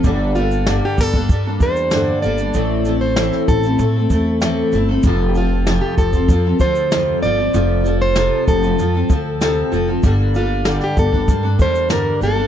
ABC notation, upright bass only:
X:1
M:4/4
L:1/16
Q:1/4=96
K:F
V:1 name="Upright bass" clef=bass
G,,,4- G,,, z G,,,2 G,,2 E,,4 G,,,2 | A,,,4- A,,, z A,,,2 A,,2 E,,4 G,,,2 | F,,,4- F,,, z F,,,2 F,,2 D,,4 G,,,2 | F,,,4- F,,, z F,,,2 F,,2 D,,4 F,,,2 |
G,,,4- G,,, z G,,,2 G,,2 E,,4 G,,,2 |]